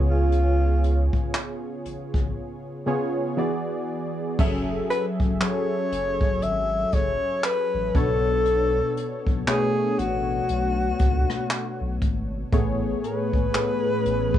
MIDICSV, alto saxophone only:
0, 0, Header, 1, 2, 480
1, 0, Start_track
1, 0, Tempo, 1016949
1, 152, Time_signature, 4, 2, 24, 8
1, 6791, End_track
2, 0, Start_track
2, 0, Title_t, "Alto saxophone"
2, 0, Program_c, 0, 65
2, 51, Note_on_c, 0, 65, 75
2, 512, Note_off_c, 0, 65, 0
2, 2314, Note_on_c, 0, 71, 92
2, 2390, Note_off_c, 0, 71, 0
2, 2555, Note_on_c, 0, 73, 100
2, 3035, Note_on_c, 0, 76, 108
2, 3042, Note_off_c, 0, 73, 0
2, 3276, Note_on_c, 0, 73, 104
2, 3283, Note_off_c, 0, 76, 0
2, 3514, Note_off_c, 0, 73, 0
2, 3516, Note_on_c, 0, 71, 94
2, 3757, Note_on_c, 0, 69, 99
2, 3764, Note_off_c, 0, 71, 0
2, 4365, Note_off_c, 0, 69, 0
2, 4476, Note_on_c, 0, 68, 91
2, 4715, Note_on_c, 0, 66, 81
2, 4723, Note_off_c, 0, 68, 0
2, 5674, Note_off_c, 0, 66, 0
2, 6155, Note_on_c, 0, 71, 91
2, 6791, Note_off_c, 0, 71, 0
2, 6791, End_track
0, 0, End_of_file